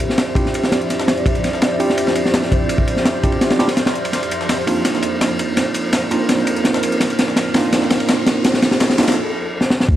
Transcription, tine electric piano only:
Already playing: C4 D4 E4 F4 G4
0.36 C4 D4 E4 F4 G4
1.80 C4 D4 E4 F4 G4
3.23 C4 D4 E4 F4 G4
3.59 C4 D4 E4 F4 G4
4.67 A#3 C4 D4 D#4 F4
6.11 A#3 C4 D4 D#4 F4
7.54 A#3 C4 D4 D#4 F4
8.98 A#3 C4 D4 D#4 F4

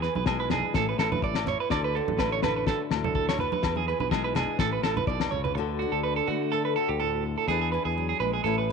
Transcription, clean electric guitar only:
0.02 B4
0.16 B4
0.27 G#4
0.40 B4
0.51 G#4
0.75 A4
0.89 B4
0.99 A4
1.12 B4
1.24 D5
1.48 C#5
1.60 B4
1.71 D5
1.84 B4
1.95 A4
2.19 B4
2.32 C#5
2.43 B4
2.56 B4
2.67 A4
3.04 A4
3.15 A4
3.29 C#5
3.40 B4
3.53 B4
3.77 G#4
3.88 B4
4.00 B4
4.11 G#4
4.24 B4
4.36 G#4
4.60 A4
4.73 B4
4.84 A4
4.97 B4
5.07 D5
5.31 C#5
5.44 B4
5.55 muted clean electric guitar stroke
5.79 F#4
5.92 A4
6.03 B4
6.16 A4
6.28 F#4
6.52 A4
6.65 B4
6.76 A4
6.89 G4
7.00 A4
7.38 A4
7.48 G#4
7.61 G#4
7.72 B4
7.85 G#4
8.09 G#4
8.20 B4
8.33 G#4
8.44 A4
8.58 B4

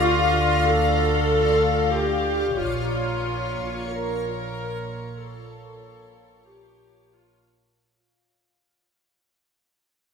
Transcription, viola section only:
0.02 F4
0.67 A4
1.96 G4
2.60 F4
3.89 A#4
5.19 A4
6.48 G4
7.13 F4

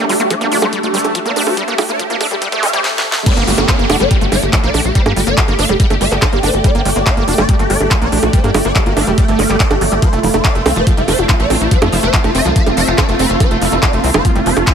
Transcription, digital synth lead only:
0.09 G4
0.20 G4
0.31 D5
0.41 G4
0.52 G4
0.62 D5
0.73 G4
0.83 G4
0.94 D5
1.04 G4
1.15 G4
1.26 D5
1.36 G4
1.47 G4
1.57 C5
1.68 G4
1.78 G4
1.89 D5
2.00 G4
2.10 G4
2.21 F5
2.31 G4
2.42 G5
2.52 G4
2.63 F5
2.74 G4
3.26 D5
3.37 G4
3.47 G4
3.58 G4
3.69 D5
3.79 G4
3.90 G4
4.00 D5
4.11 G4
4.21 G4
4.32 D5
4.43 G4
4.53 G4
4.64 D5
4.74 G4
4.85 G4
4.95 C5
5.06 G4
5.16 G4
5.27 D5
5.37 G4
5.48 G4
5.59 F5
5.69 G4
5.80 G5
5.90 G4
6.01 F5
6.11 G4
6.22 D#5
6.33 G4
6.43 C5
6.54 G4
6.64 D5
6.75 G4
6.85 G4
6.96 G4
7.07 D5
7.17 G4
7.28 G4
7.38 D5
7.49 G4
7.59 G4
7.70 D5
7.81 G4
7.91 G4
8.02 D5
8.12 G4
8.23 G4
8.33 C5
8.44 G4
8.54 G4
8.65 D5
8.76 G4
8.86 G4
8.97 F5
9.07 G4
9.18 G5
9.28 G4
9.39 F5
9.49 G4
9.60 D#5
9.71 G4
9.81 D5
9.92 G4
10.02 C5
10.13 F4
10.23 F4
10.34 F4
10.45 D5
10.55 F4
10.66 F4
10.76 C5
10.87 F4
10.97 F4
11.08 C5
11.18 F4
11.29 F4
11.40 D5
11.50 F4
11.61 F4
11.71 C5
11.82 F4
11.92 F4
12.03 C5
12.13 F4
12.24 F4
12.35 E5
12.45 F4
12.56 F5
12.66 F4
12.77 E5
12.88 F4
12.98 D5
13.09 F4
13.19 B4
13.30 F4
13.40 C5
13.51 F4
13.61 F4
13.72 F4
13.83 D5
13.93 F4
14.04 F4
14.14 C5
14.25 F4
14.35 F4
14.46 C5
14.56 F4
14.67 F4

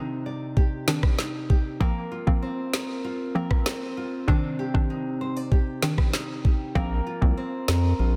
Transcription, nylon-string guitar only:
Already playing: C3 C4 D#4 G4 D5
0.26 D5
0.57 G4
0.88 D5
1.19 D#4
1.50 G4
1.81 A#3 A#4
2.12 F4
2.42 C4
2.73 A#4
3.04 F4
3.35 A#4
3.66 C4
3.97 F4
4.28 C3 D5
4.59 G4
4.90 D#4
5.21 C5
5.36 D5
5.52 G4
5.83 D5
6.14 D#4
6.45 G4
6.76 A#3 A#4
7.07 F4
7.37 C4
7.68 A#4
7.99 F4

